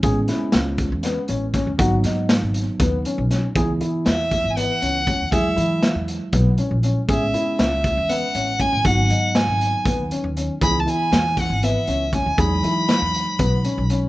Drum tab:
HH |xxxxxxx|xxxxxxx|xxxxxxx|xxxxxxx|
SD |-oo-o-o|-oo-o-o|--o----|--o----|
BD |o--o--o|o---o--|o--o--o|o---o--|

HH |xxxxxxx|xxxxxxx|xxxxxxx|xxxxxxx|
SD |--o----|--o----|--oo---|--o----|
BD |o--o--o|o---o--|o--o--o|o---o--|